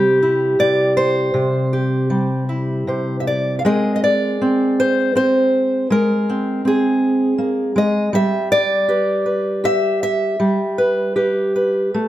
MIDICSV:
0, 0, Header, 1, 2, 480
1, 0, Start_track
1, 0, Tempo, 761421
1, 843, Time_signature, 3, 2, 24, 8
1, 3255, Tempo, 746269
1, 6615, Tempo, 773196
1, 7666, End_track
2, 0, Start_track
2, 0, Title_t, "Steel-string acoustic guitar"
2, 0, Program_c, 0, 25
2, 0, Note_on_c, 0, 48, 77
2, 0, Note_on_c, 0, 55, 60
2, 0, Note_on_c, 0, 60, 46
2, 0, Note_on_c, 0, 67, 80
2, 0, Note_on_c, 0, 72, 43
2, 139, Note_off_c, 0, 60, 0
2, 142, Note_on_c, 0, 64, 47
2, 364, Note_off_c, 0, 48, 0
2, 372, Note_on_c, 0, 48, 56
2, 374, Note_off_c, 0, 72, 0
2, 377, Note_on_c, 0, 74, 100
2, 608, Note_off_c, 0, 74, 0
2, 611, Note_on_c, 0, 72, 91
2, 816, Note_off_c, 0, 48, 0
2, 818, Note_off_c, 0, 64, 0
2, 843, Note_on_c, 0, 48, 69
2, 847, Note_off_c, 0, 67, 0
2, 1090, Note_on_c, 0, 67, 43
2, 1316, Note_off_c, 0, 55, 0
2, 1324, Note_on_c, 0, 55, 59
2, 1570, Note_on_c, 0, 64, 40
2, 1804, Note_off_c, 0, 48, 0
2, 1811, Note_off_c, 0, 72, 0
2, 1811, Note_on_c, 0, 48, 50
2, 1818, Note_on_c, 0, 72, 38
2, 2016, Note_off_c, 0, 72, 0
2, 2018, Note_on_c, 0, 76, 56
2, 2061, Note_off_c, 0, 76, 0
2, 2063, Note_on_c, 0, 74, 73
2, 2259, Note_off_c, 0, 74, 0
2, 2263, Note_on_c, 0, 77, 64
2, 2271, Note_off_c, 0, 48, 0
2, 2273, Note_off_c, 0, 64, 0
2, 2276, Note_off_c, 0, 67, 0
2, 2299, Note_on_c, 0, 56, 75
2, 2301, Note_off_c, 0, 55, 0
2, 2304, Note_off_c, 0, 77, 0
2, 2304, Note_on_c, 0, 60, 50
2, 2307, Note_on_c, 0, 68, 47
2, 2307, Note_on_c, 0, 75, 77
2, 2311, Note_on_c, 0, 70, 46
2, 2487, Note_off_c, 0, 75, 0
2, 2494, Note_on_c, 0, 75, 65
2, 2540, Note_off_c, 0, 75, 0
2, 2545, Note_on_c, 0, 74, 80
2, 2780, Note_off_c, 0, 60, 0
2, 2783, Note_on_c, 0, 60, 57
2, 3022, Note_off_c, 0, 70, 0
2, 3024, Note_on_c, 0, 72, 87
2, 3241, Note_off_c, 0, 60, 0
2, 3249, Note_off_c, 0, 72, 0
2, 3249, Note_on_c, 0, 60, 55
2, 3257, Note_on_c, 0, 72, 90
2, 3498, Note_off_c, 0, 74, 0
2, 3703, Note_off_c, 0, 60, 0
2, 3706, Note_off_c, 0, 56, 0
2, 3710, Note_off_c, 0, 68, 0
2, 3731, Note_on_c, 0, 56, 69
2, 3736, Note_off_c, 0, 72, 0
2, 3742, Note_on_c, 0, 70, 78
2, 3983, Note_on_c, 0, 60, 47
2, 4203, Note_off_c, 0, 60, 0
2, 4211, Note_on_c, 0, 60, 54
2, 4218, Note_off_c, 0, 70, 0
2, 4227, Note_on_c, 0, 68, 75
2, 4680, Note_off_c, 0, 60, 0
2, 4683, Note_on_c, 0, 58, 59
2, 4915, Note_off_c, 0, 56, 0
2, 4920, Note_off_c, 0, 58, 0
2, 4923, Note_on_c, 0, 56, 69
2, 4937, Note_on_c, 0, 75, 86
2, 5161, Note_off_c, 0, 56, 0
2, 5163, Note_on_c, 0, 55, 74
2, 5172, Note_off_c, 0, 75, 0
2, 5174, Note_off_c, 0, 68, 0
2, 5176, Note_on_c, 0, 76, 106
2, 5410, Note_off_c, 0, 76, 0
2, 5412, Note_on_c, 0, 74, 116
2, 5648, Note_on_c, 0, 67, 60
2, 5651, Note_on_c, 0, 71, 43
2, 5886, Note_off_c, 0, 71, 0
2, 5888, Note_on_c, 0, 71, 46
2, 6130, Note_off_c, 0, 67, 0
2, 6133, Note_on_c, 0, 67, 60
2, 6134, Note_off_c, 0, 74, 0
2, 6141, Note_on_c, 0, 76, 101
2, 6377, Note_off_c, 0, 76, 0
2, 6385, Note_on_c, 0, 76, 94
2, 6587, Note_off_c, 0, 71, 0
2, 6618, Note_off_c, 0, 55, 0
2, 6620, Note_on_c, 0, 55, 67
2, 6860, Note_on_c, 0, 71, 51
2, 7090, Note_off_c, 0, 71, 0
2, 7091, Note_off_c, 0, 67, 0
2, 7093, Note_on_c, 0, 67, 56
2, 7097, Note_on_c, 0, 71, 45
2, 7334, Note_off_c, 0, 71, 0
2, 7341, Note_on_c, 0, 71, 48
2, 7577, Note_off_c, 0, 55, 0
2, 7581, Note_on_c, 0, 57, 58
2, 7666, Note_off_c, 0, 57, 0
2, 7666, Note_off_c, 0, 67, 0
2, 7666, Note_off_c, 0, 71, 0
2, 7666, Note_off_c, 0, 76, 0
2, 7666, End_track
0, 0, End_of_file